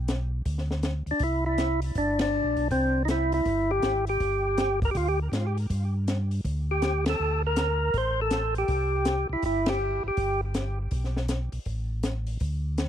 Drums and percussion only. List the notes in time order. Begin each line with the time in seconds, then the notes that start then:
0.08 snare, closed hi-hat
0.45 kick, open hi-hat
0.58 snare
0.71 snare
0.83 snare, closed hi-hat
1.07 open hi-hat
1.19 kick, open hi-hat
1.58 snare, closed hi-hat
1.82 open hi-hat
1.95 kick, open hi-hat
2.19 snare, ride
2.57 open hi-hat
2.71 kick, open hi-hat
3.08 snare, closed hi-hat
3.32 open hi-hat
3.45 kick, open hi-hat
3.82 snare, closed hi-hat
4.07 open hi-hat
4.20 kick, open hi-hat
4.58 snare, closed hi-hat
4.82 kick, open hi-hat
4.95 kick, open hi-hat
5.33 snare, closed hi-hat
5.57 open hi-hat
5.70 kick, open hi-hat
6.08 snare, closed hi-hat
6.31 open hi-hat
6.45 kick, open hi-hat
6.82 snare, closed hi-hat
7.06 snare, ride
7.56 snare, closed hi-hat
7.94 kick, open hi-hat
8.31 snare, closed hi-hat
8.55 open hi-hat
8.68 kick, open hi-hat
9.05 snare, closed hi-hat
9.42 kick, open hi-hat
9.66 snare, ride
10.17 kick, open hi-hat
10.54 snare, closed hi-hat
10.91 kick, open hi-hat
11.04 snare
11.17 snare
11.28 snare, closed hi-hat
11.52 open hi-hat
11.65 kick, open hi-hat
12.03 snare, closed hi-hat
12.27 open hi-hat
12.40 kick, open hi-hat
12.78 snare, closed hi-hat